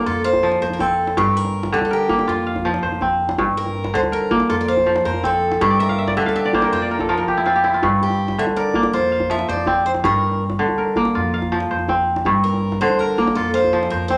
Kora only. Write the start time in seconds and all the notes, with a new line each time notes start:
Already playing: G2 D3 A#3 C4 A#4
0.06 F4
0.25 F5
0.43 F3
0.62 C5
0.80 C4
1.17 G2
1.72 D3
1.91 A#4
2.09 A#3
2.28 F4
2.47 F5
2.65 F3
2.83 C5
3.02 C4
3.39 G2
3.94 D3
4.12 A#4
4.31 A#3
4.49 F4
4.68 F5
4.86 F3
5.05 C5
5.24 C4
5.61 G2
5.70 D5
5.79 E5
5.89 F5
5.98 E5
6.08 D5
6.17 D3 E5
6.26 F5
6.36 E5
6.45 D5
6.54 A#3 C5
6.63 A#4
6.72 C5
6.82 D5
6.91 A#4
7.00 A4
7.09 F3 A#4
7.18 A#4
7.28 G4
7.37 E4
7.46 C4 F4
7.55 G4
7.64 E4
7.74 F4
7.83 G2
8.38 D3
8.57 A#4
8.75 A#3
8.94 F4
9.12 F5
9.30 F3
9.49 C5
9.67 C4
10.04 G2
10.59 D3
10.78 A#4
10.97 A#3
11.15 F4
11.34 F5
11.52 F3
11.71 C5
11.89 C4
12.26 G2
12.82 D3
13.00 A#4
13.18 A#3
13.36 F4
13.55 F5
13.73 F3
13.91 C5
14.10 C4